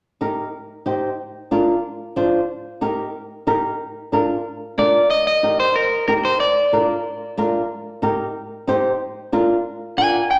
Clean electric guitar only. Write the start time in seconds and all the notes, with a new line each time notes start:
4.79 D5
5.10 D#5
5.27 D#5
5.60 C5
5.76 A#4
6.08 A#4
6.25 C5
6.40 D5
9.98 G#5
10.31 G5